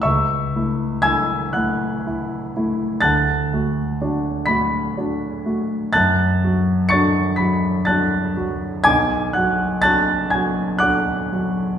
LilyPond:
\new Staff \with { instrumentName = "Grand piano" } { \time 3/4 \key d \lydian \tempo 4 = 61 << { <e'' cis''' e'''>4 <gis'' e''' gis'''>8 <fis'' fis'''>4. | <a'' fis''' a'''>4. <b'' b'''>4. | <a'' fis''' a'''>4 <cis''' a''' cis''''>8 <b'' b'''>8 <a'' fis''' a'''>8 r8 | <gis'' d''' gis'''>8 <fis'' fis'''>8 <a'' fis''' a'''>8 <gis'' gis'''>8 <fis'' d''' fis'''>4 | } \\ { cis,8 <a e'>8 e'8 <a e'>8 e'8 <a e'>8 | d,8 <a fis'>8 <d' fis'>8 <a fis'>8 <d' fis'>8 <a fis'>8 | fis,8 <fis fis'>8 <d' fis'>8 <fis fis'>8 <d' fis'>8 <fis fis'>8 | b,,8 <fis fis'>8 <d' fis'>8 <fis fis'>8 <d' fis'>8 <fis fis'>8 | } >> }